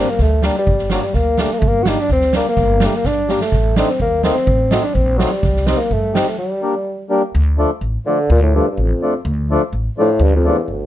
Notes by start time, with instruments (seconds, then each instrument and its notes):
Already playing: bassoon C4
0.10 bassoon A#3
0.18 upright bass D2, bassoon A3, kick, snare
0.42 accordion G3 A#3 D4, bassoon G3, snare
0.58 bassoon G3
0.67 upright bass G1, kick
0.78 snare
0.90 bassoon F#3, accordion G3 A#3 D4, snare
1.03 bassoon G3
1.14 upright bass D2, bassoon A#3, kick, snare
1.38 accordion G3 A#3 D4, bassoon A3, snare
1.52 bassoon A#3
1.58 upright bass G1, bassoon A3
1.62 kick
1.67 bassoon A#3
1.83 accordion G3 A#3 D4, bassoon F#4, snare
1.88 bassoon D#4
2.00 bassoon D4
2.09 upright bass D2, bassoon C4, kick, snare
2.21 snare
2.33 accordion G3 A#3 D4, bassoon A#3, snare
2.49 bassoon A#3
2.56 upright bass G1, kick, snare
2.80 accordion G3 A#3 D4, snare
2.85 bassoon A3
2.95 bassoon A#3
3.04 upright bass G1, bassoon D4, kick, snare
3.28 accordion G3 A#3 D4, bassoon G3, snare
3.40 bassoon A3, snare
3.52 upright bass A1, kick, snare
3.76 accordion A3 C4 D#4, bassoon D4, snare
3.87 bassoon C4 D4
4.00 upright bass D#2, bassoon A#3, kick
4.23 accordion A3 C4 D#4, bassoon A#3, snare
4.34 bassoon C4
4.47 upright bass A1, kick
4.71 accordion A3 C4 D#4, bassoon D#4 F#4, snare
4.78 bassoon D#4
4.83 bassoon D4
4.94 upright bass A#1, bassoon C4, kick
5.18 bassoon F#3, accordion A3 C4 D#4, snare
5.32 bassoon G3
5.43 upright bass C2, kick, snare
5.56 snare
5.67 accordion G3 C4 D#4, bassoon C4, snare
5.78 bassoon A#3
5.91 upright bass G2, bassoon A3, kick
6.13 accordion G3 C4 D#4, snare
6.28 bassoon A3
6.38 bassoon G3
6.62 accordion G3 A#3 D4
7.10 accordion G3 A#3 D4
7.35 upright bass D2
7.58 accordion F3 A3 D4
7.81 upright bass A1
8.06 bassoon D3, accordion F3 A3 D4
8.30 upright bass D2, bassoon A#2
8.43 bassoon A2
8.55 bassoon G2, accordion F3 A3 D4
8.71 bassoon G2
8.77 upright bass A1, bassoon F2
9.02 accordion F3 A3 D4
9.25 upright bass D2
9.51 accordion F3 A3 D4
9.73 upright bass A1
9.98 bassoon A2, accordion F3 A3 D4
10.20 upright bass D2, bassoon G2
10.36 bassoon F2
10.45 bassoon E2, accordion F3 A3 D4
10.63 bassoon E2
10.68 upright bass G1, bassoon D2